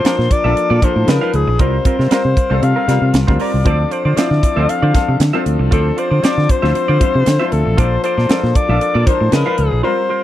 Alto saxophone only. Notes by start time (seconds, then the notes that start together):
Already playing: C5
0.32 D5
0.84 C5
1.10 A#4
1.35 G#4
1.61 C5
2.13 C5
2.64 F5
3.41 D5
3.66 D5
3.92 C5
4.17 D5
4.70 F5
5.73 A4
5.99 C5
6.24 D5
6.50 C5
7.52 A4
7.78 C5
8.04 C5
8.56 D5
9.07 C5
9.32 A#4
9.58 G#4
9.84 C5